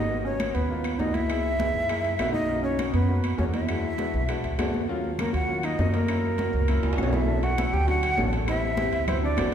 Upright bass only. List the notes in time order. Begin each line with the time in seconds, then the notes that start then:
Already playing: G#1
0.55 D#2
1.00 C#2
1.74 F#2
2.19 B1
2.93 F#2
3.38 E2
4.14 B1
4.44 C#2
4.59 D#2
5.34 D#2
5.79 F#2
6.53 C#2
6.83 C#2
6.98 B1
7.73 D2
8.18 A1
8.92 D2
9.37 G1